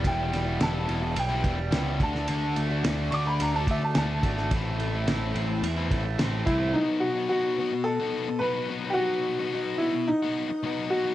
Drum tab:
RD |x-x-x-x-x-x-x-x-|x-x-x-x-x-x-x-x-|x-x-x-x-x-x-x-x-|----------------|
SD |--o-o-------o--o|----o-------o--o|----o-------o---|----------------|
BD |o---------o---o-|----------o---o-|o---------o---o-|----------------|

RD |----------------|
SD |----------------|
BD |----------------|